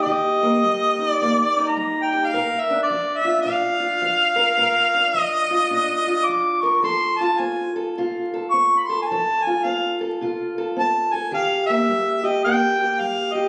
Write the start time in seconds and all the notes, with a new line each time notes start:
Already playing: A#3
0.02 D#3 D#5
0.07 G4
0.43 A#3
0.64 G3
0.99 D#4
1.09 D5
1.21 A#2 A#3
1.57 D#4
1.69 A#5
1.76 G3
2.03 G5
2.12 G4
2.26 F5
2.33 A#2 A#4
2.61 E5
2.70 D4
2.83 D5
2.90 F3
3.18 E5
3.25 F4
3.42 A#2 D4 F5
3.80 F4
4.02 F3
4.36 A#4
4.57 A#2 A#4
4.94 D4
5.14 F3
5.19 D#5
5.51 F4
5.70 A#2 D4
6.07 F4
6.25 F3 D6
6.61 A#4 C#6
6.82 F3 A4 C6
7.18 F4 A5
7.38 C4 G#5
7.76 A4
7.98 C3 F4
8.34 A4
8.51 C4 C#6
8.78 B5
8.86 A4 C6
9.02 G#5
9.07 F3 A5
9.12 A4
9.43 G#5
9.47 F4
9.64 C4 F5
10.01 A4
10.21 C3 F4
10.58 A4
10.76 C4 A5
11.13 A4 G#5
11.31 D#3 G4 F5
11.66 A#3 E5
11.89 G3
12.24 G4 D#5
12.44 A#2 A#3 G5
12.81 G4
13.00 G3 F5
13.33 G4 D#5